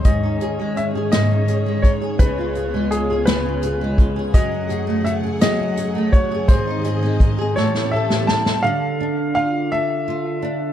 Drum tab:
HH |x-x-x-x-x-x-|x-x-x-x-x-x-|x-x-x-x-x-x-|x-x-x-------|
SD |------o-----|------o-----|------o-----|------oo-ooo|
BD |o---------o-|o---------o-|o---------o-|o---o-------|

HH |------------|
SD |------------|
BD |------------|